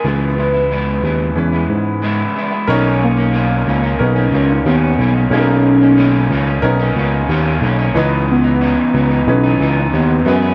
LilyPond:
<<
  \new Staff \with { instrumentName = "Upright piano" } { \time 4/4 \key b \major \tempo 4 = 91 <e b cis' gis'>4. r8 <e b cis' b'>4. r8 | <cis' dis' ais' cis''>4. r8 <b cis' dis' ais'>4. r8 | <ais cis' dis' gis' ais'>4. r8 <b cis' dis' ais'>4. r8 | <e cis' dis' b'>4. r8 <e cis' dis' b'>4. <gis e' fis' b'>8 | }
  \new Staff \with { instrumentName = "Soft synth lead" } { \time 4/4 \key b \major b'2. r4 | r8 ais4. cis'8. dis'16 b4 | cis'2 r2 | r8 b4. cis'8. dis'16 b4 | }
  \new Staff \with { instrumentName = "Clean electric guitar" } { \time 4/4 \key b \major <cis gis b e'>8 <cis gis b e'>16 <gis b e'>16 <cis gis b e'>8 <cis gis b e'>8. <gis b e'>8. <cis gis b e'>8 <cis gis b e'>16 <gis b e'>16 | <b, dis ais cis'>8. <dis ais cis'>16 <b, dis ais cis'>8 <b, dis ais cis'>16 <dis ais cis'>8 <dis ais cis'>16 <b, dis ais cis'>8 <b, dis cis'>8 <b, dis ais cis'>16 <dis ais cis'>16 | <b, dis ais cis'>8. <dis ais cis'>16 <b, dis ais cis'>8 <b, dis ais cis'>16 <dis ais cis'>8 <dis ais cis'>16 <b, dis ais cis'>8 <b, dis ais cis'>8 <b, dis ais cis'>16 <dis ais cis'>16 | <cis e b dis'>8. <e b dis'>16 <cis e b dis'>8 <cis e b dis'>16 <e b dis'>8 <e b dis'>16 <cis e b dis'>8 <cis b dis'>8 <e b cis' gis'>16 <e b cis' gis'>16 | }
  \new Staff \with { instrumentName = "Tine electric piano" } { \clef bass \time 4/4 \key b \major cis,4. dis,8 e,8 gis,4 r8 | b,,4. cis,8 b,,8 cis,8 dis,8 b,,8 | b,,4. cis,8 b,,8 cis,8 dis,8 b,,8 | cis,4~ cis,16 r16 cis,8 b,,8 cis,8 dis,8 fis,8 | }
>>